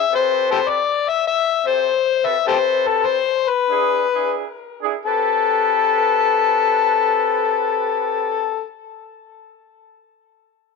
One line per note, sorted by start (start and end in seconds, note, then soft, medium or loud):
0.00 0.11 E5 loud
0.10 0.83 C4 medium
0.10 0.83 G4 medium
0.10 0.83 A4 medium
0.10 0.83 B4 medium
0.15 0.48 C5 loud
0.51 0.59 G4 medium
0.51 0.59 A4 medium
0.51 0.71 C5 medium
0.69 1.10 D5 loud
1.09 1.26 E5 medium
1.27 1.68 E5 loud
1.64 1.92 C4 medium
1.64 1.92 G4 medium
1.64 1.92 A4 medium
1.64 1.92 C5 medium
1.64 2.27 C5 medium
2.24 2.36 C4 medium
2.24 2.36 G4 medium
2.24 2.36 A4 medium
2.24 2.36 B4 medium
2.24 2.45 E5 medium
2.44 3.22 C4 medium
2.44 3.23 G4 medium
2.44 2.57 G4 medium
2.44 3.23 A4 medium
2.44 2.56 A4 medium
2.44 3.23 B4 medium
2.44 2.89 C5 loud
2.87 3.07 A4 medium
3.06 3.51 C5 medium
3.49 4.36 B4 medium
3.69 4.04 D4 medium
3.69 4.05 E4 medium
3.69 4.05 G#4 medium
4.14 4.45 D4 medium
4.14 4.45 E4 medium
4.14 4.45 G#4 medium
4.81 4.95 D4 medium
4.81 4.96 E4 medium
4.81 4.96 G#4 medium
5.05 8.64 C4 medium
5.05 8.64 G4 medium
5.05 8.64 A4 medium
5.05 8.64 B4 medium